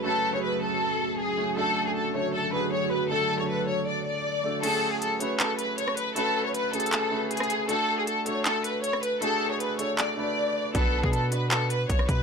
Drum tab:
CC |------------------------------------------------|------------------------------------------------|------------------------------------------------|x-----------------------------------------------|
HH |------------------------------------------------|------------------------------------------------|------------------------------------------------|x-----------x-----x-----x-----x-----x-----x-----|
CP |------------------------------------------------|------------------------------------------------|------------------------------------------------|------------------------x-----------------------|
SD |------------------------------------------------|------------------------------------------------|------------------------------------------------|---------------------------------------r--------|
BD |------------------------------------------------|------------------------------------------------|------------------------------------------------|------------------------------------------------|

CC |------------------------------------------------|------------------------------------------------|------------------------------------------------|------------------------------------------------|
HH |x-----------x-----x-x-x-x-----------x-x-x-x-----|x-----------x-----x-----x-----x-----x-----x-----|x-----------x-----x-----x-----------------------|x-----------x-----x-----x-----x-----x-----x-----|
CP |------------------------x-----------------------|------------------------x-----------------------|------------------------x-----------------------|------------------------x-----------------------|
SD |---------------------------------------r--------|---------------------------------------r--------|------------------------------------------------|---------------------------------------r--------|
BD |------------------------------------------------|------------------------------------------------|------------------------------------------------|o--------o--------------------------o-----o-----|